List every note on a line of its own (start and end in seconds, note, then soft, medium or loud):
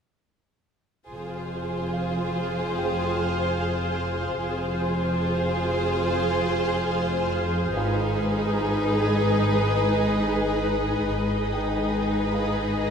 1.09 4.39 F1 soft
1.09 4.39 F2 soft
1.09 4.39 F4 soft
1.09 4.38 G#4 soft
1.09 4.39 G#4 soft
1.09 4.38 C5 soft
1.09 4.39 C5 soft
1.09 4.39 F5 soft
1.94 4.39 F5 soft
2.78 5.23 G#4 soft
2.78 5.23 G5 soft
4.41 7.71 F1 soft
4.41 7.71 F2 soft
4.41 7.71 F4 soft
4.41 7.71 G#4 soft
4.41 7.72 G#4 soft
4.41 7.72 C5 soft
4.41 7.72 F5 soft
7.75 11.05 G#1 soft
7.75 11.05 G#2 medium
7.75 11.05 D#4 medium
7.75 10.22 F4 soft
7.75 11.05 G#4 soft
7.75 11.05 G#4 medium
7.75 11.05 B4 soft
7.75 11.09 B4 medium
7.75 11.09 D#5 medium
7.75 10.22 F5 soft
9.01 11.47 G#5 soft
11.08 12.90 G#1 soft
11.08 12.90 G#2 soft
11.08 12.90 D#4 soft
11.08 12.90 G#4 soft
11.08 12.90 B4 soft
11.08 12.90 D#5 soft
11.53 12.90 G5 soft
12.34 12.90 F5 soft